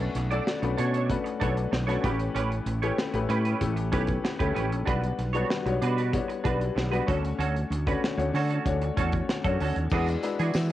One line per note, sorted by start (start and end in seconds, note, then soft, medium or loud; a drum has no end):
0.00 0.27 A3 medium
0.00 0.27 C#4 medium
0.00 0.27 D4 medium
0.00 0.27 F#4 medium
0.00 0.27 B4 medium
0.00 muted clean electric guitar stroke soft
0.15 0.39 B1 medium
0.15 muted clean electric guitar stroke soft
0.15 snare soft
0.15 closed hi-hat medium
0.31 0.60 A3 medium
0.31 0.60 C#4 medium
0.31 0.60 D4 medium
0.31 0.45 D4 soft
0.31 0.60 F#4 medium
0.31 0.46 A4 medium
0.31 0.46 D5 medium
0.31 0.60 D5 medium
0.31 closed hi-hat soft
0.47 muted clean electric guitar stroke soft
0.47 snare loud
0.62 0.74 B1 medium
0.62 1.06 A3 medium
0.62 1.06 C#4 medium
0.62 1.06 D4 medium
0.62 1.06 F#4 medium
0.62 1.06 B4 medium
0.62 muted clean electric guitar stroke soft
0.62 closed hi-hat medium
0.77 1.14 B2 medium
0.77 0.94 D4 medium
0.77 0.93 A4 medium
0.77 0.92 C#5 medium
0.77 snare soft
0.77 closed hi-hat medium
0.93 1.10 D4 soft
0.93 1.09 A4 medium
0.93 1.09 C#5 medium
0.93 closed hi-hat soft
1.09 1.38 A3 medium
1.09 1.38 C#4 medium
1.09 1.39 D4 medium
1.09 1.39 F#4 medium
1.09 1.39 B4 medium
1.09 kick medium
1.09 closed hi-hat medium
1.24 muted clean electric guitar stroke soft
1.24 closed hi-hat soft
1.40 1.65 B1 medium
1.40 1.84 A3 medium
1.40 1.84 C#4 medium
1.40 1.60 D4 medium
1.40 1.84 D4 medium
1.40 1.84 F#4 medium
1.40 1.56 A4 medium
1.40 1.84 B4 medium
1.40 1.54 C#5 medium
1.40 kick medium
1.40 closed hi-hat medium
1.56 muted clean electric guitar stroke soft
1.56 closed hi-hat soft
1.71 1.96 B1 medium
1.71 muted clean electric guitar stroke soft
1.71 snare medium
1.87 2.02 A3 medium
1.87 2.04 C#4 medium
1.87 2.04 D4 medium
1.87 2.03 D4 soft
1.87 2.04 F#4 medium
1.87 2.03 A4 medium
1.87 2.03 B4 medium
1.87 2.03 C#5 medium
1.87 snare soft
1.87 closed hi-hat soft
2.03 2.28 A1 loud
2.03 2.75 A3 medium
2.03 2.11 B3 medium
2.03 2.23 C#4 medium
2.03 2.76 E4 medium
2.03 2.19 G4 medium
2.03 2.76 G4 medium
2.03 2.76 B4 medium
2.03 2.18 B4 medium
2.03 kick medium
2.03 closed hi-hat medium
2.10 2.79 C#4 medium
2.19 muted clean electric guitar stroke soft
2.19 closed hi-hat soft
2.35 2.59 A1 medium
2.35 2.54 C#4 medium
2.35 2.51 G4 medium
2.35 2.50 B4 medium
2.35 closed hi-hat medium
2.51 muted clean electric guitar stroke soft
2.51 closed hi-hat soft
2.66 2.90 A1 medium
2.66 muted clean electric guitar stroke soft
2.66 closed hi-hat medium
2.82 3.11 A3 medium
2.82 3.11 C#4 medium
2.82 2.97 C#4 soft
2.82 3.12 E4 medium
2.82 3.12 G4 medium
2.82 2.97 G4 medium
2.82 3.12 B4 medium
2.82 2.97 C#5 medium
2.82 closed hi-hat soft
2.98 muted clean electric guitar stroke soft
2.98 snare loud
3.14 3.26 A1 medium
3.14 3.57 A3 medium
3.14 3.57 C#4 medium
3.14 3.58 E4 medium
3.14 3.57 G4 medium
3.14 3.58 B4 medium
3.14 muted clean electric guitar stroke soft
3.14 closed hi-hat medium
3.29 3.53 A2 medium
3.29 3.46 C#4 medium
3.29 3.45 G4 medium
3.29 3.44 B4 loud
3.29 closed hi-hat medium
3.45 3.61 C#4 soft
3.45 3.61 G4 medium
3.45 3.60 B4 medium
3.45 closed hi-hat soft
3.60 3.93 A1 medium
3.60 3.90 A3 medium
3.60 3.90 C#4 medium
3.60 3.90 E4 medium
3.60 3.90 G4 medium
3.60 3.90 A4 medium
3.60 kick medium
3.60 closed hi-hat medium
3.76 muted clean electric guitar stroke soft
3.76 closed hi-hat soft
3.92 4.17 B1 medium
3.92 4.36 A3 medium
3.92 4.12 C#4 medium
3.92 4.36 C#4 medium
3.92 4.36 E4 medium
3.92 4.36 G4 medium
3.92 4.08 G4 medium
3.92 4.36 B4 medium
3.92 4.06 B4 medium
3.92 kick medium
3.92 closed hi-hat medium
4.07 muted clean electric guitar stroke soft
4.07 kick medium
4.07 closed hi-hat soft
4.24 muted clean electric guitar stroke soft
4.24 snare loud
4.39 4.52 D2 medium
4.39 4.83 A3 medium
4.39 4.83 C#4 medium
4.39 4.53 C#4 soft
4.39 4.83 E4 medium
4.39 4.54 G4 medium
4.39 4.83 G4 medium
4.39 4.84 A4 medium
4.39 4.55 B4 medium
4.39 kick medium
4.39 closed hi-hat soft
4.54 4.72 A1 medium
4.54 4.74 C#4 medium
4.54 4.71 G4 medium
4.54 4.69 B4 medium
4.54 closed hi-hat medium
4.70 4.84 A#1 medium
4.70 muted clean electric guitar stroke soft
4.70 closed hi-hat soft
4.85 5.11 B1 loud
4.85 5.30 G3 medium
4.85 5.30 B3 medium
4.85 5.06 D4 medium
4.85 5.30 D4 medium
4.85 5.02 F#4 medium
4.85 5.31 F#4 medium
4.85 5.01 B4 medium
4.85 5.31 B4 medium
4.85 kick medium
4.85 closed hi-hat medium
5.02 muted clean electric guitar stroke soft
5.02 closed hi-hat soft
5.18 5.43 B1 medium
5.18 muted clean electric guitar stroke soft
5.18 snare soft
5.18 closed hi-hat medium
5.33 5.63 G3 medium
5.33 5.63 B3 medium
5.33 5.63 D4 medium
5.33 5.48 D4 soft
5.33 5.49 F#4 medium
5.33 5.64 F#4 medium
5.33 5.64 B4 medium
5.33 5.49 C#5 medium
5.33 closed hi-hat soft
5.50 muted clean electric guitar stroke soft
5.50 snare loud
5.66 5.78 B1 medium
5.66 6.09 G3 medium
5.66 6.09 B3 medium
5.66 6.10 D4 medium
5.66 6.10 F#4 medium
5.66 6.10 C#5 medium
5.66 muted clean electric guitar stroke soft
5.66 closed hi-hat medium
5.82 6.18 B2 medium
5.82 5.98 D4 medium
5.82 5.97 F#4 medium
5.82 5.96 B4 medium
5.82 closed hi-hat medium
5.97 6.13 D4 soft
5.97 6.13 F#4 medium
5.97 6.12 B4 medium
5.97 closed hi-hat soft
6.13 6.42 G3 medium
6.13 6.42 B3 medium
6.13 6.42 D4 medium
6.13 6.42 F#4 medium
6.13 6.43 C#5 medium
6.13 kick medium
6.13 closed hi-hat medium
6.28 muted clean electric guitar stroke soft
6.28 closed hi-hat soft
6.44 6.69 B1 medium
6.44 6.88 G3 medium
6.44 6.88 B3 medium
6.44 6.63 D4 medium
6.44 6.88 D4 medium
6.44 6.60 F#4 medium
6.44 6.88 F#4 medium
6.44 6.88 B4 medium
6.44 6.59 B4 medium
6.44 kick medium
6.44 closed hi-hat medium
6.60 muted clean electric guitar stroke soft
6.60 closed hi-hat soft
6.75 7.00 B1 medium
6.75 muted clean electric guitar stroke soft
6.75 snare loud
6.91 7.07 G3 medium
6.91 7.08 B3 medium
6.91 7.07 D4 medium
6.91 7.06 D4 soft
6.91 7.07 F#4 medium
6.91 7.07 B4 medium
6.91 7.08 B4 medium
6.91 closed hi-hat soft
7.07 7.32 D2 loud
7.07 7.79 A3 medium
7.07 7.26 C#4 medium
7.07 7.79 C#4 medium
7.07 7.80 D4 medium
7.07 7.23 F#4 medium
7.07 7.80 F#4 medium
7.07 7.22 A4 medium
7.07 7.80 C#5 medium
7.07 kick medium
7.07 closed hi-hat medium
7.23 muted clean electric guitar stroke soft
7.23 closed hi-hat soft
7.39 7.63 D2 loud
7.39 7.58 C#4 medium
7.39 7.55 F#4 medium
7.39 7.54 A4 medium
7.39 closed hi-hat medium
7.55 muted clean electric guitar stroke soft
7.55 closed hi-hat soft
7.70 7.94 D2 medium
7.70 muted clean electric guitar stroke soft
7.70 closed hi-hat medium
7.86 8.15 A3 medium
7.86 8.15 C#4 medium
7.86 8.01 C#4 soft
7.86 8.15 D4 medium
7.86 8.16 F#4 medium
7.86 8.02 F#4 medium
7.86 8.02 B4 medium
7.86 8.16 C#5 medium
7.86 kick medium
7.86 closed hi-hat soft
8.03 muted clean electric guitar stroke soft
8.03 snare loud
8.17 8.30 D2 medium
8.17 8.61 A3 medium
8.17 8.61 C#4 medium
8.17 8.61 D4 medium
8.17 8.61 F#4 medium
8.17 8.61 C#5 medium
8.17 muted clean electric guitar stroke soft
8.17 closed hi-hat medium
8.34 8.58 D3 medium
8.34 8.50 C#4 medium
8.34 8.50 F#4 medium
8.34 8.49 A4 medium
8.34 snare soft
8.34 open hi-hat medium
8.50 8.66 C#4 soft
8.50 8.65 F#4 medium
8.50 8.65 A4 medium
8.50 closed hi-hat soft
8.65 8.89 D2 medium
8.65 8.94 A3 medium
8.65 8.94 C#4 medium
8.65 8.94 D4 medium
8.65 8.95 F#4 medium
8.65 8.95 C#5 medium
8.65 kick medium
8.65 closed hi-hat medium
8.82 muted clean electric guitar stroke soft
8.82 closed hi-hat soft
8.96 9.21 E2 medium
8.96 9.40 A3 medium
8.96 9.40 C#4 medium
8.96 9.16 C#4 medium
8.96 9.40 D4 medium
8.96 9.40 F#4 medium
8.96 9.13 F#4 medium
8.96 9.12 A4 medium
8.96 9.40 C#5 medium
8.96 kick medium
8.96 closed hi-hat medium
9.12 muted clean electric guitar stroke soft
9.12 kick medium
9.12 closed hi-hat soft
9.29 muted clean electric guitar stroke soft
9.29 snare loud
9.43 9.56 F#2 medium
9.43 9.87 A3 medium
9.43 9.87 C#4 medium
9.43 9.59 C#4 soft
9.43 9.87 D4 medium
9.43 9.87 F#4 medium
9.43 9.60 F#4 medium
9.43 9.59 A4 medium
9.43 9.87 C#5 medium
9.43 kick loud
9.43 closed hi-hat soft
9.60 9.72 D2 medium
9.60 9.79 C#4 medium
9.60 9.76 F#4 medium
9.60 9.75 A4 medium
9.60 open hi-hat medium
9.76 9.88 D#2 medium
9.76 muted clean electric guitar stroke soft
9.76 closed hi-hat soft
9.90 10.15 E2 loud
9.90 10.20 G#3 medium
9.90 10.11 D4 medium
9.90 10.20 D4 medium
9.90 10.20 E4 medium
9.90 10.20 F#4 medium
9.90 10.08 F#4 medium
9.90 10.07 G#4 medium
9.90 10.21 B4 medium
9.90 kick loud
9.90 crash medium
9.90 tambourine soft
10.06 muted clean electric guitar stroke soft
10.06 closed hi-hat soft
10.06 tambourine soft
10.22 10.66 G#3 medium
10.22 10.66 D4 medium
10.22 10.66 E4 medium
10.22 10.66 F#4 medium
10.22 10.66 B4 medium
10.22 muted clean electric guitar stroke soft
10.22 snare soft
10.22 closed hi-hat medium
10.22 tambourine soft
10.39 10.51 E3 medium
10.39 10.55 D4 medium
10.39 10.55 F#4 medium
10.39 10.54 G#4 medium
10.39 closed hi-hat soft
10.39 tambourine soft
10.54 10.72 E3 medium
10.54 snare loud
10.54 tambourine medium